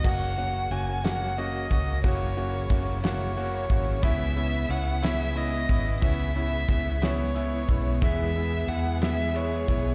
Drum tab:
CC |x-----|------|------|------|
RD |-xxxxx|xxxxxx|xxxxxx|xxxxxx|
SD |---o--|---o--|---o--|---o--|
BD |o----o|o-o--o|o----o|o-o--o|

CC |------|
RD |xxxxxx|
SD |---o--|
BD |o----o|